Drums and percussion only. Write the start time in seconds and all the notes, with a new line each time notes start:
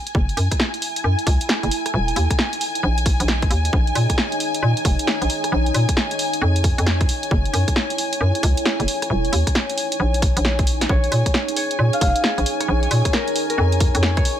0.07 closed hi-hat
0.15 kick
0.29 closed hi-hat
0.37 open hi-hat
0.51 kick, cross-stick, closed hi-hat
0.60 snare
0.74 closed hi-hat
0.82 open hi-hat
0.96 closed hi-hat
1.19 closed hi-hat
1.27 kick, open hi-hat
1.41 closed hi-hat
1.49 snare
1.63 closed hi-hat
1.71 open hi-hat
1.86 cross-stick, closed hi-hat
2.08 closed hi-hat
2.16 open hi-hat
2.30 kick, cross-stick, closed hi-hat
2.39 snare
2.53 closed hi-hat
2.61 open hi-hat
2.75 closed hi-hat
2.98 closed hi-hat
3.06 kick, cross-stick, open hi-hat
3.20 closed hi-hat
3.28 snare
3.42 kick, cross-stick, closed hi-hat
3.51 open hi-hat
3.65 closed hi-hat
3.73 kick
3.87 closed hi-hat
3.95 open hi-hat
4.10 kick, cross-stick, closed hi-hat
4.18 snare
4.32 closed hi-hat
4.40 open hi-hat
4.54 closed hi-hat
4.77 closed hi-hat
4.85 kick, open hi-hat
4.99 closed hi-hat
5.07 snare
5.22 closed hi-hat
5.30 open hi-hat
5.44 cross-stick, closed hi-hat
5.66 closed hi-hat
5.74 open hi-hat
5.89 kick, cross-stick, closed hi-hat
5.97 snare
6.11 closed hi-hat
6.19 open hi-hat
6.33 closed hi-hat
6.56 closed hi-hat
6.64 kick, cross-stick, open hi-hat
6.78 closed hi-hat
6.86 snare
7.01 kick, cross-stick, closed hi-hat
7.09 open hi-hat
7.23 closed hi-hat
7.31 kick
7.45 closed hi-hat
7.54 open hi-hat
7.68 kick, cross-stick, closed hi-hat
7.76 snare
7.90 closed hi-hat
7.98 open hi-hat
8.13 closed hi-hat
8.35 closed hi-hat
8.43 kick, open hi-hat
8.57 closed hi-hat
8.65 snare
8.80 closed hi-hat
8.88 open hi-hat
9.02 cross-stick, closed hi-hat
9.25 closed hi-hat
9.33 open hi-hat
9.47 kick, cross-stick, closed hi-hat
9.55 snare
9.70 closed hi-hat
9.78 open hi-hat
9.92 closed hi-hat
10.14 closed hi-hat
10.22 kick, cross-stick, open hi-hat
10.37 closed hi-hat
10.45 snare
10.59 kick, closed hi-hat
10.67 open hi-hat
10.81 snare, closed hi-hat
10.89 kick
11.04 closed hi-hat
11.12 open hi-hat
11.26 kick, cross-stick, closed hi-hat
11.34 snare
11.48 closed hi-hat
11.56 open hi-hat
11.71 closed hi-hat
11.93 closed hi-hat
12.01 kick, open hi-hat
12.16 closed hi-hat
12.24 snare
12.38 closed hi-hat
12.46 open hi-hat
12.60 cross-stick, closed hi-hat
12.83 closed hi-hat
12.91 open hi-hat
13.05 kick, cross-stick, closed hi-hat
13.13 snare
13.28 closed hi-hat
13.36 open hi-hat
13.50 closed hi-hat
13.72 closed hi-hat
13.80 kick, cross-stick, open hi-hat
13.95 closed hi-hat
14.03 snare
14.17 kick, cross-stick, closed hi-hat
14.25 open hi-hat